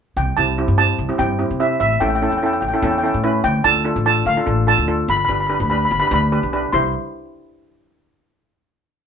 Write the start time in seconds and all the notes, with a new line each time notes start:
0.17 C2 G5
0.37 C2 C4 E4 G4 A5
0.58 C4 E4 G4
0.68 G2
0.78 C4 E4 G4 A5
0.99 C2
1.09 C4 E4 G4
1.18 G2 C4 E4 G4 G5
1.39 C4 E4 G4
1.50 C3
1.60 C4 E4 G4 E5
1.80 A1 E5
2.00 A1 C#4 E4 A4 G5
2.08 G5
2.15 G5
2.22 C#4 E4 A4 G5
2.30 E2 G5
2.37 G5
2.42 C#4 E4 A4 G5
2.53 G5
2.61 A1 G5
2.68 G5
2.73 C#4 E4 A4 G5
2.82 E2 C#4 E4 A4 G5
2.91 G5
2.98 G5
3.03 C#4 E4 A4 G5
3.14 A2
3.24 C#4 E4 B4
3.44 D2 G5
3.64 D2 D4 F4 A4 A5
3.84 D4 F4 A4
3.96 A1
4.06 D4 F4 A4 A5
4.26 D2 F5
4.37 D4 F4 A4
4.46 A1 D4 F4 A4
4.67 D4 F4 A4 A5
4.78 D2
4.88 D4 F4 A4
5.08 G1 B5
5.17 B5
5.25 G1 D4 B5
5.29 G4 B4 B5
5.40 B5
5.47 D4 G4 B4 B5
5.54 B5
5.60 D2 B5
5.70 D4 G4 B4 B5
5.78 B5
5.85 B5
5.91 G1 B5
6.00 D4 G4 B4 B5
6.07 D2 D4 G4 B5
6.12 B4 B5
6.32 D4 G4 B4
6.43 B1
6.53 D4 G4 B4
6.73 C2 E4 G4 C5 C6